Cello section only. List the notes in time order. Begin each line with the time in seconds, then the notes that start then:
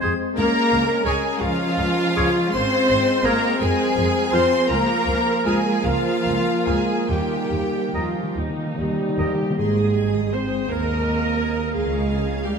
0.36 A#3
1.06 G#3
1.40 F3
2.54 C4
3.24 A#3
3.60 G#3
4.32 C4
4.69 A#3
5.46 G#3
5.85 F3
6.67 G#3
7.08 G3
9.58 G#2
10.68 D#2
11.74 C#3